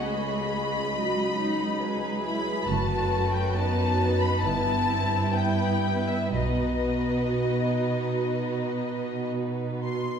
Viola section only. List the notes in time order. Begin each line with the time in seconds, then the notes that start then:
Already playing: G#4
0.04 A3
0.51 G#3
0.94 F#3 F#4
1.38 D#4
1.81 G#4
2.68 A3 F#4
3.55 B3
4.43 B3 E4
4.90 C4
5.37 B3 E4
6.35 B3 F#4